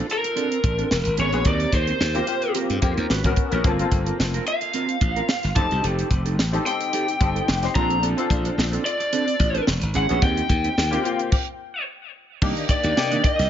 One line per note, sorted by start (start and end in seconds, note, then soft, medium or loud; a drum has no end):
0.00 0.93 C4 medium
0.00 0.93 D4 medium
0.00 0.93 F4 medium
0.00 0.93 A4 loud
0.10 1.16 A#4 medium
0.10 closed hi-hat medium
0.23 muted clean electric guitar stroke soft
0.23 closed hi-hat soft
0.36 0.57 C4 medium
0.36 0.51 D4 medium
0.36 0.50 A4 medium
0.36 closed hi-hat medium
0.51 muted clean electric guitar stroke soft
0.51 closed hi-hat soft
0.64 0.83 A1 medium
0.64 muted clean electric guitar stroke soft
0.64 kick medium
0.64 closed hi-hat medium
0.78 0.90 C4 medium
0.78 0.91 D4 medium
0.78 0.91 A4 medium
0.78 closed hi-hat soft
0.91 1.01 E1 medium
0.91 muted clean electric guitar stroke soft
0.91 snare loud
1.05 1.15 G#1 medium
1.05 muted clean electric guitar stroke soft
1.05 closed hi-hat medium
1.17 1.33 G#1 medium
1.17 1.32 B3 medium
1.17 1.32 C#4 medium
1.17 1.31 G#4 medium
1.17 1.47 C#5 medium
1.17 closed hi-hat medium
1.32 1.42 A#1 medium
1.32 1.45 B3 medium
1.32 1.45 B3 soft
1.32 1.45 C#4 medium
1.32 1.45 C#4 soft
1.32 1.46 F#4 medium
1.32 1.46 G#4 medium
1.32 closed hi-hat soft
1.45 1.64 D#2 medium
1.45 1.71 C4 medium
1.45 1.71 G4 medium
1.45 1.71 A#4 medium
1.45 1.72 D5 medium
1.45 kick loud
1.45 closed hi-hat medium
1.60 closed hi-hat soft
1.73 1.92 D#2 medium
1.73 2.52 C5 medium
1.73 kick medium
1.73 closed hi-hat medium
1.87 1.99 C4 soft
1.87 2.00 G4 soft
1.87 2.00 A#4 medium
1.87 closed hi-hat soft
2.00 2.19 D#2 medium
2.00 snare medium
2.14 2.24 A#3 medium
2.14 2.24 C4 medium
2.14 2.26 C4 medium
2.14 2.24 F4 medium
2.14 2.24 G4 medium
2.14 2.27 G4 medium
2.14 2.27 A#4 medium
2.14 closed hi-hat soft
2.27 2.68 A#3 medium
2.27 2.68 C4 medium
2.27 2.68 F4 medium
2.27 2.69 G4 medium
2.27 muted clean electric guitar stroke soft
2.27 closed hi-hat medium
2.42 muted clean electric guitar stroke soft
2.42 closed hi-hat soft
2.55 2.76 C4 medium
2.55 2.70 G4 medium
2.55 2.69 A#4 medium
2.55 closed hi-hat medium
2.70 2.78 G2 medium
2.70 muted clean electric guitar stroke soft
2.70 closed hi-hat soft
2.81 2.93 F2 medium
2.81 3.09 A#3 medium
2.81 3.10 C4 medium
2.81 3.10 F4 medium
2.81 3.10 G4 medium
2.81 muted clean electric guitar stroke soft
2.81 kick medium
2.81 closed hi-hat medium
2.97 3.06 D#2 medium
2.97 3.10 C4 soft
2.97 3.10 G4 soft
2.97 3.11 A#4 medium
2.97 closed hi-hat soft
3.10 3.20 G#1 medium
3.10 3.31 C#4 medium
3.10 3.25 F#4 medium
3.10 3.24 B4 medium
3.10 snare loud
3.24 3.33 G#1 medium
3.24 3.44 B3 medium
3.24 3.44 C#4 medium
3.24 3.44 F#4 medium
3.24 3.44 A#4 medium
3.24 muted clean electric guitar stroke soft
3.24 kick medium
3.24 closed hi-hat medium
3.36 muted clean electric guitar stroke soft
3.36 kick medium
3.36 closed hi-hat medium
3.51 3.61 A#1 medium
3.51 3.61 B3 medium
3.51 3.61 C#4 medium
3.51 3.64 C#4 soft
3.51 3.61 F#4 medium
3.51 3.65 F#4 medium
3.51 3.61 A#4 medium
3.51 3.66 B4 medium
3.51 closed hi-hat soft
3.64 3.83 G1 medium
3.64 3.75 A#3 medium
3.64 3.75 C4 medium
3.64 3.90 C4 medium
3.64 3.75 F4 medium
3.64 3.90 F4 medium
3.64 3.76 A4 medium
3.64 3.91 A#4 medium
3.64 kick loud
3.64 closed hi-hat medium
3.79 4.59 A#3 medium
3.79 4.59 C4 medium
3.79 4.59 F4 medium
3.79 4.59 A4 medium
3.79 closed hi-hat soft
3.92 4.10 G1 medium
3.92 kick medium
3.92 closed hi-hat medium
4.06 4.18 C4 soft
4.06 4.19 F4 medium
4.06 4.19 A#4 soft
4.06 closed hi-hat soft
4.20 4.38 F1 medium
4.20 snare loud
4.34 4.46 C4 medium
4.34 4.46 F4 medium
4.34 4.47 A#4 medium
4.34 closed hi-hat soft
4.47 5.60 F5 medium
4.47 muted clean electric guitar stroke soft
4.47 closed hi-hat medium
4.61 muted clean electric guitar stroke soft
4.61 closed hi-hat soft
4.73 4.95 C4 medium
4.73 4.88 F4 medium
4.73 4.87 A#4 medium
4.73 closed hi-hat medium
4.88 muted clean electric guitar stroke soft
4.88 closed hi-hat soft
5.01 5.20 A1 medium
5.01 muted clean electric guitar stroke soft
5.01 kick medium
5.01 closed hi-hat medium
5.16 5.28 C4 soft
5.16 5.29 F4 soft
5.16 5.29 A#4 medium
5.16 closed hi-hat soft
5.29 muted clean electric guitar stroke soft
5.29 snare loud
5.43 5.52 G1 medium
5.43 muted clean electric guitar stroke soft
5.43 snare soft
5.43 closed hi-hat soft
5.55 5.66 F1 medium
5.55 6.33 C4 medium
5.55 5.71 D#4 medium
5.55 6.34 D#4 medium
5.55 5.70 G4 medium
5.55 6.34 G4 medium
5.55 5.70 A4 medium
5.55 6.34 A4 medium
5.55 5.82 A5 medium
5.55 kick medium
5.55 closed hi-hat medium
5.71 5.80 C2 medium
5.71 5.82 D#4 soft
5.71 5.82 G4 medium
5.71 5.83 A4 medium
5.71 closed hi-hat soft
5.83 6.02 F1 medium
5.83 6.08 D#4 medium
5.83 6.09 G4 medium
5.83 6.09 A4 medium
5.83 closed hi-hat medium
5.99 closed hi-hat soft
6.11 6.39 F1 medium
6.11 muted clean electric guitar stroke soft
6.11 kick medium
6.11 closed hi-hat medium
6.25 6.37 D#4 soft
6.25 6.37 G4 medium
6.25 6.38 A4 medium
6.25 closed hi-hat soft
6.39 6.57 A1 medium
6.39 snare loud
6.52 6.62 C4 medium
6.52 6.62 D#4 medium
6.52 6.64 D#4 medium
6.52 6.62 G4 medium
6.52 6.65 G4 medium
6.52 6.65 A4 medium
6.52 6.63 A4 medium
6.52 closed hi-hat soft
6.66 7.06 C4 medium
6.66 7.07 D#4 medium
6.66 7.07 G4 medium
6.66 7.07 A4 medium
6.66 7.79 G5 medium
6.66 muted clean electric guitar stroke soft
6.66 closed hi-hat medium
6.80 muted clean electric guitar stroke soft
6.80 closed hi-hat soft
6.93 7.14 D#4 medium
6.93 7.08 G4 medium
6.93 7.07 A4 medium
6.93 closed hi-hat medium
7.08 muted clean electric guitar stroke medium
7.08 closed hi-hat soft
7.20 7.39 G1 medium
7.20 7.50 C4 medium
7.20 7.51 D#4 medium
7.20 7.51 G4 medium
7.20 7.51 A4 medium
7.20 muted clean electric guitar stroke soft
7.20 kick medium
7.20 closed hi-hat medium
7.35 7.47 D#4 medium
7.35 7.47 G4 medium
7.35 7.47 A4 medium
7.35 closed hi-hat soft
7.48 7.67 F1 medium
7.48 snare loud
7.63 7.73 C4 medium
7.63 7.75 D#4 medium
7.63 7.76 G4 medium
7.63 7.76 C5 medium
7.63 muted clean electric guitar stroke soft
7.63 snare soft
7.63 closed hi-hat medium
7.75 8.13 A#1 medium
7.75 8.08 C4 medium
7.75 7.96 C4 medium
7.75 8.09 D4 medium
7.75 7.90 D4 medium
7.75 8.09 F4 medium
7.75 8.09 A4 medium
7.75 7.89 A4 medium
7.75 8.01 A#5 medium
7.75 kick medium
7.75 closed hi-hat medium
7.90 muted clean electric guitar stroke medium
7.90 closed hi-hat soft
8.03 8.28 C4 medium
8.03 8.28 D4 medium
8.03 8.29 A4 medium
8.03 closed hi-hat medium
8.17 8.97 C4 medium
8.17 8.97 D4 medium
8.17 8.97 F4 medium
8.17 8.97 A4 medium
8.17 closed hi-hat soft
8.30 8.49 A#1 medium
8.30 kick medium
8.30 closed hi-hat medium
8.45 8.57 C4 soft
8.45 8.57 D4 medium
8.45 8.57 A4 medium
8.45 closed hi-hat soft
8.58 8.76 A#1 medium
8.58 muted clean electric guitar stroke soft
8.58 snare loud
8.73 8.84 C4 medium
8.73 8.84 D4 medium
8.73 8.85 A4 medium
8.73 closed hi-hat soft
8.85 9.63 D5 loud
8.85 muted clean electric guitar stroke soft
8.85 closed hi-hat medium
9.00 muted clean electric guitar stroke soft
9.00 closed hi-hat soft
9.12 9.34 C4 medium
9.12 9.27 D4 medium
9.12 9.26 A4 medium
9.12 closed hi-hat medium
9.27 muted clean electric guitar stroke soft
9.27 closed hi-hat soft
9.40 9.58 A1 medium
9.40 muted clean electric guitar stroke soft
9.40 kick medium
9.40 closed hi-hat medium
9.54 9.67 C4 soft
9.54 9.67 D4 soft
9.54 9.68 A4 medium
9.54 closed hi-hat soft
9.67 9.77 E1 medium
9.67 snare loud
9.81 9.91 G#1 medium
9.81 muted clean electric guitar stroke soft
9.81 closed hi-hat medium
9.94 10.05 G#1 medium
9.94 10.09 C#4 medium
9.94 10.09 E4 medium
9.94 10.08 G#4 medium
9.94 10.23 F#5 medium
9.94 closed hi-hat medium
10.08 10.19 A#1 medium
10.08 10.22 B3 medium
10.08 10.22 C#4 medium
10.08 10.21 C#4 soft
10.08 10.22 E4 medium
10.08 10.22 F#4 medium
10.08 10.23 G#4 medium
10.08 10.22 G#4 medium
10.08 closed hi-hat soft
10.22 10.41 D#2 medium
10.22 10.47 C4 medium
10.22 10.48 D#4 medium
10.22 10.48 G4 medium
10.22 11.83 G5 medium
10.22 kick loud
10.22 closed hi-hat medium
10.37 closed hi-hat soft
10.49 10.68 D#2 medium
10.49 muted clean electric guitar stroke soft
10.49 kick medium
10.49 closed hi-hat medium
10.64 10.76 C4 soft
10.64 10.76 D#4 soft
10.64 10.77 G4 medium
10.64 closed hi-hat soft
10.77 10.96 D#2 medium
10.77 muted clean electric guitar stroke soft
10.77 snare loud
10.91 11.00 A#3 medium
10.91 11.01 C4 medium
10.91 11.03 C4 medium
10.91 11.04 D#4 medium
10.91 11.01 F4 medium
10.91 11.04 G4 medium
10.91 11.01 G4 medium
10.91 closed hi-hat medium
11.03 11.31 A#3 medium
11.03 11.31 C4 medium
11.03 11.32 F4 medium
11.03 11.32 G4 medium
11.03 muted clean electric guitar stroke soft
11.03 closed hi-hat medium
11.19 muted clean electric guitar stroke soft
11.19 closed hi-hat soft
11.32 kick medium
11.32 crash medium
12.42 12.52 C2 medium
12.42 12.63 D#3 medium
12.42 12.82 A#3 medium
12.42 12.56 A#3 medium
12.42 12.82 D4 medium
12.42 12.55 D4 medium
12.42 12.83 D#4 medium
12.42 12.83 G4 medium
12.42 kick loud
12.42 crash medium
12.56 muted clean electric guitar stroke soft
12.56 closed hi-hat soft
12.69 13.24 D5 medium
12.69 muted clean electric guitar stroke soft
12.69 kick medium
12.69 closed hi-hat medium
12.83 12.93 D#2 medium
12.83 12.95 D#3 medium
12.83 12.96 A#3 medium
12.83 12.96 D4 medium
12.83 closed hi-hat soft
12.96 13.16 C3 medium
12.96 13.37 A#3 medium
12.96 13.37 D4 medium
12.96 13.37 D#4 medium
12.96 13.38 G4 medium
12.96 snare loud
13.11 13.22 D#3 medium
13.11 13.23 A#3 medium
13.11 13.23 D4 medium
13.11 closed hi-hat medium
13.24 13.50 D#5 medium
13.24 muted clean electric guitar stroke soft
13.24 kick medium
13.24 closed hi-hat medium
13.38 13.47 C2 medium
13.38 muted clean electric guitar stroke soft
13.38 snare soft
13.38 closed hi-hat soft